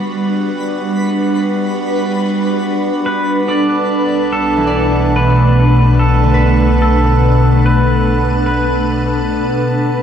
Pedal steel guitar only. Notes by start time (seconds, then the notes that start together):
3.06 B4
3.48 D5
4.33 A4
5.16 B4
5.99 A4
6.82 A4
7.66 B4
8.46 B4